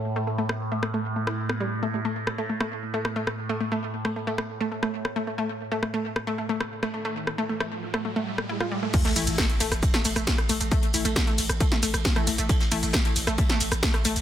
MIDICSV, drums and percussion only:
0, 0, Header, 1, 2, 480
1, 0, Start_track
1, 0, Tempo, 444444
1, 53, Time_signature, 4, 2, 24, 8
1, 15352, End_track
2, 0, Start_track
2, 0, Title_t, "Drums"
2, 533, Note_on_c, 9, 37, 92
2, 641, Note_off_c, 9, 37, 0
2, 894, Note_on_c, 9, 37, 89
2, 1002, Note_off_c, 9, 37, 0
2, 1374, Note_on_c, 9, 37, 92
2, 1482, Note_off_c, 9, 37, 0
2, 1614, Note_on_c, 9, 37, 85
2, 1722, Note_off_c, 9, 37, 0
2, 2453, Note_on_c, 9, 37, 93
2, 2561, Note_off_c, 9, 37, 0
2, 2814, Note_on_c, 9, 37, 94
2, 2922, Note_off_c, 9, 37, 0
2, 3293, Note_on_c, 9, 37, 94
2, 3401, Note_off_c, 9, 37, 0
2, 3533, Note_on_c, 9, 37, 83
2, 3641, Note_off_c, 9, 37, 0
2, 4373, Note_on_c, 9, 37, 92
2, 4481, Note_off_c, 9, 37, 0
2, 4733, Note_on_c, 9, 37, 97
2, 4841, Note_off_c, 9, 37, 0
2, 5214, Note_on_c, 9, 37, 92
2, 5322, Note_off_c, 9, 37, 0
2, 5453, Note_on_c, 9, 37, 84
2, 5561, Note_off_c, 9, 37, 0
2, 6293, Note_on_c, 9, 37, 88
2, 6401, Note_off_c, 9, 37, 0
2, 6653, Note_on_c, 9, 37, 95
2, 6761, Note_off_c, 9, 37, 0
2, 7134, Note_on_c, 9, 37, 92
2, 7242, Note_off_c, 9, 37, 0
2, 7374, Note_on_c, 9, 37, 85
2, 7482, Note_off_c, 9, 37, 0
2, 7854, Note_on_c, 9, 37, 81
2, 7962, Note_off_c, 9, 37, 0
2, 8213, Note_on_c, 9, 37, 88
2, 8321, Note_off_c, 9, 37, 0
2, 8574, Note_on_c, 9, 37, 90
2, 8682, Note_off_c, 9, 37, 0
2, 9053, Note_on_c, 9, 37, 89
2, 9161, Note_off_c, 9, 37, 0
2, 9293, Note_on_c, 9, 37, 80
2, 9401, Note_off_c, 9, 37, 0
2, 9652, Note_on_c, 9, 36, 122
2, 9652, Note_on_c, 9, 42, 81
2, 9652, Note_on_c, 9, 49, 100
2, 9652, Note_on_c, 9, 82, 31
2, 9655, Note_on_c, 9, 51, 86
2, 9760, Note_off_c, 9, 36, 0
2, 9760, Note_off_c, 9, 42, 0
2, 9760, Note_off_c, 9, 49, 0
2, 9760, Note_off_c, 9, 82, 0
2, 9763, Note_off_c, 9, 51, 0
2, 9773, Note_on_c, 9, 42, 56
2, 9780, Note_on_c, 9, 38, 56
2, 9881, Note_off_c, 9, 42, 0
2, 9883, Note_on_c, 9, 46, 77
2, 9888, Note_off_c, 9, 38, 0
2, 9892, Note_off_c, 9, 46, 0
2, 9892, Note_on_c, 9, 46, 104
2, 9892, Note_on_c, 9, 82, 74
2, 10000, Note_off_c, 9, 46, 0
2, 10000, Note_off_c, 9, 82, 0
2, 10013, Note_on_c, 9, 42, 56
2, 10013, Note_on_c, 9, 82, 44
2, 10121, Note_off_c, 9, 42, 0
2, 10121, Note_off_c, 9, 82, 0
2, 10133, Note_on_c, 9, 36, 113
2, 10133, Note_on_c, 9, 37, 90
2, 10133, Note_on_c, 9, 38, 124
2, 10133, Note_on_c, 9, 42, 82
2, 10133, Note_on_c, 9, 51, 93
2, 10133, Note_on_c, 9, 82, 32
2, 10141, Note_off_c, 9, 38, 0
2, 10141, Note_on_c, 9, 38, 123
2, 10241, Note_off_c, 9, 36, 0
2, 10241, Note_off_c, 9, 37, 0
2, 10241, Note_off_c, 9, 42, 0
2, 10241, Note_off_c, 9, 51, 0
2, 10241, Note_off_c, 9, 82, 0
2, 10249, Note_off_c, 9, 38, 0
2, 10254, Note_on_c, 9, 42, 57
2, 10254, Note_on_c, 9, 51, 46
2, 10362, Note_off_c, 9, 42, 0
2, 10362, Note_off_c, 9, 51, 0
2, 10372, Note_on_c, 9, 51, 69
2, 10373, Note_on_c, 9, 46, 109
2, 10373, Note_on_c, 9, 82, 74
2, 10480, Note_off_c, 9, 51, 0
2, 10481, Note_off_c, 9, 46, 0
2, 10481, Note_off_c, 9, 82, 0
2, 10494, Note_on_c, 9, 37, 90
2, 10494, Note_on_c, 9, 42, 55
2, 10494, Note_on_c, 9, 82, 42
2, 10602, Note_off_c, 9, 37, 0
2, 10602, Note_off_c, 9, 42, 0
2, 10602, Note_off_c, 9, 82, 0
2, 10613, Note_on_c, 9, 36, 118
2, 10613, Note_on_c, 9, 42, 81
2, 10613, Note_on_c, 9, 82, 32
2, 10614, Note_on_c, 9, 51, 82
2, 10721, Note_off_c, 9, 36, 0
2, 10721, Note_off_c, 9, 42, 0
2, 10721, Note_off_c, 9, 82, 0
2, 10722, Note_off_c, 9, 51, 0
2, 10734, Note_on_c, 9, 38, 65
2, 10734, Note_on_c, 9, 42, 57
2, 10842, Note_off_c, 9, 38, 0
2, 10842, Note_off_c, 9, 42, 0
2, 10853, Note_on_c, 9, 46, 107
2, 10853, Note_on_c, 9, 82, 76
2, 10856, Note_on_c, 9, 51, 77
2, 10961, Note_off_c, 9, 46, 0
2, 10961, Note_off_c, 9, 82, 0
2, 10964, Note_off_c, 9, 51, 0
2, 10974, Note_on_c, 9, 37, 92
2, 10974, Note_on_c, 9, 42, 56
2, 10974, Note_on_c, 9, 82, 44
2, 11082, Note_off_c, 9, 37, 0
2, 11082, Note_off_c, 9, 42, 0
2, 11082, Note_off_c, 9, 82, 0
2, 11093, Note_on_c, 9, 36, 119
2, 11093, Note_on_c, 9, 38, 124
2, 11093, Note_on_c, 9, 42, 84
2, 11093, Note_on_c, 9, 51, 86
2, 11093, Note_on_c, 9, 82, 31
2, 11098, Note_off_c, 9, 38, 0
2, 11098, Note_on_c, 9, 38, 113
2, 11201, Note_off_c, 9, 36, 0
2, 11201, Note_off_c, 9, 42, 0
2, 11201, Note_off_c, 9, 51, 0
2, 11201, Note_off_c, 9, 82, 0
2, 11206, Note_off_c, 9, 38, 0
2, 11214, Note_on_c, 9, 37, 81
2, 11214, Note_on_c, 9, 42, 58
2, 11322, Note_off_c, 9, 37, 0
2, 11322, Note_off_c, 9, 42, 0
2, 11330, Note_on_c, 9, 51, 67
2, 11333, Note_on_c, 9, 46, 106
2, 11333, Note_on_c, 9, 82, 75
2, 11438, Note_off_c, 9, 51, 0
2, 11441, Note_off_c, 9, 46, 0
2, 11441, Note_off_c, 9, 82, 0
2, 11454, Note_on_c, 9, 42, 57
2, 11454, Note_on_c, 9, 82, 43
2, 11562, Note_off_c, 9, 42, 0
2, 11562, Note_off_c, 9, 82, 0
2, 11567, Note_on_c, 9, 51, 87
2, 11573, Note_on_c, 9, 36, 123
2, 11574, Note_on_c, 9, 42, 83
2, 11574, Note_on_c, 9, 82, 29
2, 11675, Note_off_c, 9, 51, 0
2, 11681, Note_off_c, 9, 36, 0
2, 11682, Note_off_c, 9, 42, 0
2, 11682, Note_off_c, 9, 82, 0
2, 11694, Note_on_c, 9, 42, 55
2, 11802, Note_off_c, 9, 42, 0
2, 11814, Note_on_c, 9, 46, 109
2, 11814, Note_on_c, 9, 82, 71
2, 11817, Note_on_c, 9, 51, 62
2, 11922, Note_off_c, 9, 46, 0
2, 11922, Note_off_c, 9, 82, 0
2, 11925, Note_off_c, 9, 51, 0
2, 11932, Note_on_c, 9, 51, 46
2, 11935, Note_on_c, 9, 42, 58
2, 11935, Note_on_c, 9, 82, 41
2, 12040, Note_off_c, 9, 51, 0
2, 12043, Note_off_c, 9, 42, 0
2, 12043, Note_off_c, 9, 82, 0
2, 12053, Note_on_c, 9, 36, 119
2, 12054, Note_on_c, 9, 37, 90
2, 12054, Note_on_c, 9, 38, 116
2, 12054, Note_on_c, 9, 42, 85
2, 12054, Note_on_c, 9, 51, 84
2, 12054, Note_on_c, 9, 82, 31
2, 12161, Note_off_c, 9, 36, 0
2, 12162, Note_off_c, 9, 37, 0
2, 12162, Note_off_c, 9, 38, 0
2, 12162, Note_off_c, 9, 42, 0
2, 12162, Note_off_c, 9, 51, 0
2, 12162, Note_off_c, 9, 82, 0
2, 12175, Note_on_c, 9, 42, 56
2, 12176, Note_on_c, 9, 51, 45
2, 12283, Note_off_c, 9, 42, 0
2, 12284, Note_off_c, 9, 51, 0
2, 12293, Note_on_c, 9, 46, 111
2, 12293, Note_on_c, 9, 82, 74
2, 12297, Note_on_c, 9, 51, 67
2, 12401, Note_off_c, 9, 46, 0
2, 12401, Note_off_c, 9, 82, 0
2, 12405, Note_off_c, 9, 51, 0
2, 12414, Note_on_c, 9, 37, 90
2, 12414, Note_on_c, 9, 42, 56
2, 12414, Note_on_c, 9, 82, 42
2, 12522, Note_off_c, 9, 37, 0
2, 12522, Note_off_c, 9, 42, 0
2, 12522, Note_off_c, 9, 82, 0
2, 12529, Note_on_c, 9, 51, 86
2, 12533, Note_on_c, 9, 36, 123
2, 12534, Note_on_c, 9, 42, 81
2, 12534, Note_on_c, 9, 82, 31
2, 12637, Note_off_c, 9, 51, 0
2, 12641, Note_off_c, 9, 36, 0
2, 12642, Note_off_c, 9, 42, 0
2, 12642, Note_off_c, 9, 82, 0
2, 12655, Note_on_c, 9, 38, 61
2, 12655, Note_on_c, 9, 42, 55
2, 12763, Note_off_c, 9, 38, 0
2, 12763, Note_off_c, 9, 42, 0
2, 12765, Note_on_c, 9, 51, 66
2, 12773, Note_on_c, 9, 46, 112
2, 12773, Note_on_c, 9, 82, 70
2, 12873, Note_off_c, 9, 51, 0
2, 12881, Note_off_c, 9, 46, 0
2, 12881, Note_off_c, 9, 82, 0
2, 12894, Note_on_c, 9, 37, 88
2, 12894, Note_on_c, 9, 42, 56
2, 12894, Note_on_c, 9, 82, 41
2, 12898, Note_on_c, 9, 51, 48
2, 13002, Note_off_c, 9, 37, 0
2, 13002, Note_off_c, 9, 42, 0
2, 13002, Note_off_c, 9, 82, 0
2, 13006, Note_off_c, 9, 51, 0
2, 13012, Note_on_c, 9, 38, 122
2, 13013, Note_off_c, 9, 38, 0
2, 13013, Note_on_c, 9, 36, 124
2, 13013, Note_on_c, 9, 38, 124
2, 13013, Note_on_c, 9, 42, 85
2, 13013, Note_on_c, 9, 82, 31
2, 13017, Note_on_c, 9, 51, 99
2, 13121, Note_off_c, 9, 36, 0
2, 13121, Note_off_c, 9, 38, 0
2, 13121, Note_off_c, 9, 42, 0
2, 13121, Note_off_c, 9, 82, 0
2, 13125, Note_off_c, 9, 51, 0
2, 13134, Note_on_c, 9, 37, 82
2, 13134, Note_on_c, 9, 42, 56
2, 13242, Note_off_c, 9, 37, 0
2, 13242, Note_off_c, 9, 42, 0
2, 13252, Note_on_c, 9, 51, 71
2, 13254, Note_on_c, 9, 46, 113
2, 13254, Note_on_c, 9, 82, 73
2, 13360, Note_off_c, 9, 51, 0
2, 13362, Note_off_c, 9, 46, 0
2, 13362, Note_off_c, 9, 82, 0
2, 13374, Note_on_c, 9, 42, 56
2, 13374, Note_on_c, 9, 82, 41
2, 13482, Note_off_c, 9, 42, 0
2, 13482, Note_off_c, 9, 82, 0
2, 13493, Note_on_c, 9, 36, 126
2, 13493, Note_on_c, 9, 42, 81
2, 13493, Note_on_c, 9, 51, 90
2, 13493, Note_on_c, 9, 82, 29
2, 13601, Note_off_c, 9, 36, 0
2, 13601, Note_off_c, 9, 42, 0
2, 13601, Note_off_c, 9, 51, 0
2, 13601, Note_off_c, 9, 82, 0
2, 13609, Note_on_c, 9, 38, 56
2, 13614, Note_on_c, 9, 42, 55
2, 13717, Note_off_c, 9, 38, 0
2, 13722, Note_off_c, 9, 42, 0
2, 13733, Note_on_c, 9, 46, 111
2, 13733, Note_on_c, 9, 82, 71
2, 13738, Note_off_c, 9, 46, 0
2, 13738, Note_on_c, 9, 46, 73
2, 13841, Note_off_c, 9, 82, 0
2, 13846, Note_off_c, 9, 46, 0
2, 13854, Note_on_c, 9, 42, 57
2, 13854, Note_on_c, 9, 82, 41
2, 13962, Note_off_c, 9, 42, 0
2, 13962, Note_off_c, 9, 82, 0
2, 13965, Note_on_c, 9, 38, 120
2, 13973, Note_off_c, 9, 38, 0
2, 13973, Note_on_c, 9, 36, 122
2, 13973, Note_on_c, 9, 37, 93
2, 13973, Note_on_c, 9, 38, 116
2, 13973, Note_on_c, 9, 42, 81
2, 13973, Note_on_c, 9, 51, 98
2, 13973, Note_on_c, 9, 82, 31
2, 14081, Note_off_c, 9, 36, 0
2, 14081, Note_off_c, 9, 37, 0
2, 14081, Note_off_c, 9, 38, 0
2, 14081, Note_off_c, 9, 42, 0
2, 14081, Note_off_c, 9, 51, 0
2, 14081, Note_off_c, 9, 82, 0
2, 14094, Note_on_c, 9, 42, 56
2, 14099, Note_on_c, 9, 51, 48
2, 14202, Note_off_c, 9, 42, 0
2, 14207, Note_off_c, 9, 51, 0
2, 14210, Note_on_c, 9, 51, 68
2, 14213, Note_on_c, 9, 46, 113
2, 14213, Note_on_c, 9, 82, 74
2, 14318, Note_off_c, 9, 51, 0
2, 14321, Note_off_c, 9, 46, 0
2, 14321, Note_off_c, 9, 82, 0
2, 14334, Note_on_c, 9, 37, 90
2, 14334, Note_on_c, 9, 82, 41
2, 14442, Note_off_c, 9, 37, 0
2, 14442, Note_off_c, 9, 82, 0
2, 14446, Note_on_c, 9, 51, 87
2, 14453, Note_on_c, 9, 36, 126
2, 14453, Note_on_c, 9, 42, 80
2, 14453, Note_on_c, 9, 82, 31
2, 14554, Note_off_c, 9, 51, 0
2, 14561, Note_off_c, 9, 36, 0
2, 14561, Note_off_c, 9, 42, 0
2, 14561, Note_off_c, 9, 82, 0
2, 14574, Note_on_c, 9, 38, 61
2, 14574, Note_on_c, 9, 42, 55
2, 14682, Note_off_c, 9, 38, 0
2, 14682, Note_off_c, 9, 42, 0
2, 14692, Note_on_c, 9, 51, 71
2, 14693, Note_on_c, 9, 46, 113
2, 14693, Note_on_c, 9, 82, 71
2, 14800, Note_off_c, 9, 51, 0
2, 14801, Note_off_c, 9, 46, 0
2, 14801, Note_off_c, 9, 82, 0
2, 14814, Note_on_c, 9, 37, 91
2, 14814, Note_on_c, 9, 42, 56
2, 14814, Note_on_c, 9, 82, 41
2, 14922, Note_off_c, 9, 37, 0
2, 14922, Note_off_c, 9, 42, 0
2, 14922, Note_off_c, 9, 82, 0
2, 14932, Note_on_c, 9, 51, 94
2, 14933, Note_on_c, 9, 36, 126
2, 14934, Note_on_c, 9, 38, 115
2, 14934, Note_on_c, 9, 42, 84
2, 14934, Note_on_c, 9, 82, 31
2, 14935, Note_off_c, 9, 38, 0
2, 14935, Note_on_c, 9, 38, 104
2, 15040, Note_off_c, 9, 51, 0
2, 15041, Note_off_c, 9, 36, 0
2, 15042, Note_off_c, 9, 42, 0
2, 15042, Note_off_c, 9, 82, 0
2, 15043, Note_off_c, 9, 38, 0
2, 15054, Note_on_c, 9, 37, 83
2, 15054, Note_on_c, 9, 42, 56
2, 15162, Note_off_c, 9, 37, 0
2, 15162, Note_off_c, 9, 42, 0
2, 15171, Note_on_c, 9, 51, 69
2, 15173, Note_on_c, 9, 46, 117
2, 15173, Note_on_c, 9, 82, 73
2, 15279, Note_off_c, 9, 51, 0
2, 15281, Note_off_c, 9, 46, 0
2, 15281, Note_off_c, 9, 82, 0
2, 15294, Note_on_c, 9, 42, 55
2, 15294, Note_on_c, 9, 82, 40
2, 15352, Note_off_c, 9, 42, 0
2, 15352, Note_off_c, 9, 82, 0
2, 15352, End_track
0, 0, End_of_file